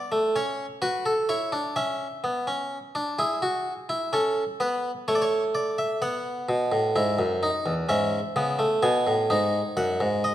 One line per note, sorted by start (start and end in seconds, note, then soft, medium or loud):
0.00 0.17 D5 medium
0.12 0.34 A3 medium
0.36 0.65 C#4 medium
0.36 0.65 C#5 medium
0.82 1.11 F#4 medium
0.82 1.05 B4 medium
1.06 1.28 A4 medium
1.29 1.52 E4 medium
1.29 1.58 C#5 medium
1.52 1.75 D4 medium
1.76 2.06 C#4 medium
1.76 3.14 E5 medium
2.24 2.47 B3 medium
2.47 2.77 C#4 medium
2.95 3.18 D4 medium
3.19 3.41 E4 medium
3.19 4.10 G#4 medium
3.42 3.72 F#4 medium
3.89 4.12 E4 medium
4.13 4.42 C#4 medium
4.13 4.42 A4 medium
4.60 4.90 B3 medium
4.60 4.90 B4 medium
5.08 5.99 A3 medium
5.08 5.12 C#5 medium
5.15 5.22 D5 medium
5.22 5.42 C#5 medium
5.55 5.78 D5 medium
5.78 6.01 E5 medium
6.02 6.93 B3 medium
6.02 7.86 F#5 medium
6.49 6.72 B2 medium
6.72 6.95 A2 medium
6.96 7.19 G#2 medium
6.96 7.25 E4 medium
7.19 7.48 F#2 medium
7.43 7.72 D#4 medium
7.66 7.89 E2 medium
7.89 8.18 G#2 medium
7.89 8.18 C#4 medium
7.89 8.81 E5 medium
8.36 8.65 C#3 medium
8.36 8.59 B3 medium
8.59 8.82 A3 medium
8.83 9.06 B2 medium
8.83 9.12 B3 medium
8.83 9.74 G#5 medium
9.07 9.30 A2 medium
9.30 9.59 G#2 medium
9.30 10.35 D#4 medium
9.77 10.00 F#2 medium
9.77 10.06 F#5 medium
10.00 10.30 G#2 medium
10.24 10.35 D#5 medium